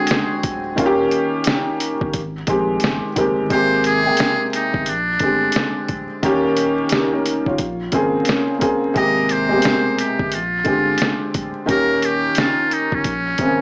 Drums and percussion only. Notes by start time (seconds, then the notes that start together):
0.07 closed hi-hat
0.11 snare
0.43 kick, closed hi-hat
0.78 kick, closed hi-hat
1.11 closed hi-hat
1.44 snare, closed hi-hat
1.80 closed hi-hat
2.01 kick
2.14 kick, closed hi-hat
2.47 kick, closed hi-hat
2.80 closed hi-hat
2.84 snare
3.16 kick, closed hi-hat
3.50 kick, closed hi-hat
3.84 closed hi-hat
4.17 snare, closed hi-hat
4.53 closed hi-hat
4.74 kick
4.86 closed hi-hat
5.19 kick, closed hi-hat
5.52 closed hi-hat
5.56 snare
5.89 kick, closed hi-hat
6.23 kick, closed hi-hat
6.56 closed hi-hat
6.89 snare, closed hi-hat
7.26 closed hi-hat
7.46 kick
7.58 kick, closed hi-hat
7.92 kick, closed hi-hat
8.25 closed hi-hat
8.29 snare
8.61 kick, closed hi-hat
8.96 kick, closed hi-hat
9.29 closed hi-hat
9.62 snare, closed hi-hat
9.98 closed hi-hat
10.19 kick
10.32 closed hi-hat
10.65 kick, closed hi-hat
10.98 closed hi-hat
11.02 snare
11.34 kick, closed hi-hat
11.69 kick, closed hi-hat
12.02 closed hi-hat
12.35 snare, closed hi-hat
12.71 closed hi-hat
12.92 kick
13.04 kick, closed hi-hat
13.38 kick, closed hi-hat